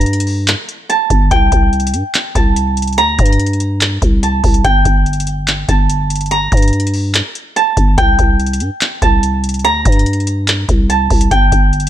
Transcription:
Already playing: 808-style bass G2, harp A#5
0.01 closed hi-hat
0.06 closed hi-hat
0.13 closed hi-hat
0.20 closed hi-hat
0.27 open hi-hat
0.48 clap, closed hi-hat
0.69 closed hi-hat
0.89 harp A5, closed hi-hat
1.10 808-style bass G1, kick, closed hi-hat
1.31 808-style bass C2, harp G5, kick, closed hi-hat
1.52 808-style bass C2, kick, closed hi-hat
1.73 closed hi-hat
1.80 closed hi-hat
1.87 closed hi-hat
1.94 808-style bass G2, closed hi-hat
2.14 clap, closed hi-hat
2.35 808-style bass C2, harp A5, kick, closed hi-hat
2.56 closed hi-hat
2.77 closed hi-hat
2.82 closed hi-hat
2.87 closed hi-hat
2.93 closed hi-hat
2.98 808-style bass D2, harp A#5, closed hi-hat
3.19 808-style bass G2, kick, closed hi-hat
3.26 closed hi-hat
3.33 closed hi-hat
3.40 closed hi-hat
3.46 closed hi-hat
3.53 closed hi-hat
3.60 closed hi-hat
3.81 clap, closed hi-hat
4.02 808-style bass C2, kick, closed hi-hat
4.23 harp A5, closed hi-hat
4.44 808-style bass C2, kick, closed hi-hat, open hi-hat
4.54 closed hi-hat
4.64 808-style bass G1, harp G5, kick, closed hi-hat
4.85 808-style bass G1, kick, closed hi-hat
5.06 closed hi-hat
5.13 closed hi-hat
5.20 closed hi-hat
5.27 closed hi-hat
5.48 clap, closed hi-hat
5.69 808-style bass G1, harp A5, kick, closed hi-hat
5.90 closed hi-hat
6.10 closed hi-hat
6.16 closed hi-hat
6.21 closed hi-hat
6.26 closed hi-hat
6.31 harp A#5, closed hi-hat
6.52 808-style bass G2, kick, closed hi-hat
6.57 closed hi-hat
6.62 closed hi-hat
6.68 closed hi-hat
6.73 closed hi-hat
6.80 closed hi-hat
6.87 closed hi-hat
6.94 open hi-hat
7.14 clap, closed hi-hat
7.35 closed hi-hat
7.56 harp A5, closed hi-hat
7.77 808-style bass G1, kick, closed hi-hat
7.98 808-style bass C2, harp G5, kick, closed hi-hat
8.19 808-style bass C2, kick, closed hi-hat
8.40 closed hi-hat
8.46 closed hi-hat
8.53 closed hi-hat
8.60 808-style bass G2, closed hi-hat
8.81 clap, closed hi-hat
9.02 808-style bass C2, harp A5, kick, closed hi-hat
9.23 closed hi-hat
9.44 closed hi-hat
9.49 closed hi-hat
9.54 closed hi-hat
9.59 closed hi-hat
9.64 808-style bass D2, harp A#5, closed hi-hat
9.85 808-style bass G2, kick, closed hi-hat
9.92 closed hi-hat
9.99 closed hi-hat
10.06 closed hi-hat
10.13 closed hi-hat
10.20 closed hi-hat
10.27 closed hi-hat
10.48 clap, closed hi-hat
10.69 808-style bass C2, kick, closed hi-hat
10.90 harp A5, closed hi-hat
11.10 808-style bass C2, kick, closed hi-hat, open hi-hat
11.21 closed hi-hat
11.31 808-style bass G1, harp G5, kick, closed hi-hat
11.52 808-style bass G1, kick, closed hi-hat
11.73 closed hi-hat
11.80 closed hi-hat

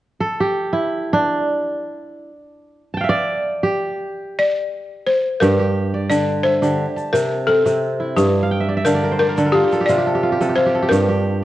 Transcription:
0.20 kora A4
0.40 kora G4
0.73 kora E4
1.13 kora D4
2.94 kora G5 A5
3.01 kora E5 F5
3.09 kora D5
3.63 kora G4
4.39 balafon D5
5.07 balafon C5
5.40 kora G2 G4, balafon A#4, shaker
5.59 kora G4
5.94 kora D5
6.09 kora D3, balafon D5, shaker
6.43 balafon C5, kora E5
6.62 kora D3 G4, shaker
6.96 kora A5, shaker
7.13 kora C3, balafon A#4, shaker
7.47 kora C4, balafon A4
7.66 kora C3, shaker
8.00 kora E4
8.17 kora G2, balafon G4, shaker
8.43 kora F5
8.51 kora G5
8.60 kora E5
8.69 kora D5
8.77 kora E5
8.85 kora D3 F5, balafon A#4, shaker
8.95 kora D5
9.03 kora A#4
9.12 kora C5
9.19 balafon A#4, kora D5
9.29 kora A#4
9.37 kora D3 A4, shaker
9.46 kora A#4
9.52 kora F4, balafon G4
9.64 kora G4
9.72 kora A4, shaker
9.81 kora G4
9.86 kora C3 F4, balafon D5, shaker
9.98 kora G4
10.07 kora A4
10.15 kora G4
10.23 kora F4
10.32 kora G4
10.40 kora C3 A4, shaker
10.49 kora G4
10.55 kora F4, balafon C5
10.66 kora G4
10.75 kora A4
10.82 kora G4
10.89 kora G2 G4, balafon A#4, shaker
11.08 kora G4

